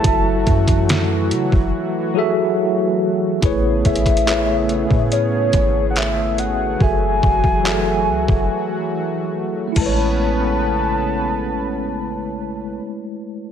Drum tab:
CC |--------------------------------|--------------------------------|----------------------------x---|--------------------------------|
HH |x---x-x-x---x-------------------|x---xxxxx---x---x---x---x---x---|--------------------------------|--------------------------------|
CP |--------------------------------|--------x---------------x-------|--------x-----------------------|--------------------------------|
SD |--------o-----------------------|--------------------------------|--------------------------------|--------------------------------|
BD |o---o-o-------o-----------------|o---o-o-------o-----o-----------|o---o-o-------o-------------o---|--------------------------------|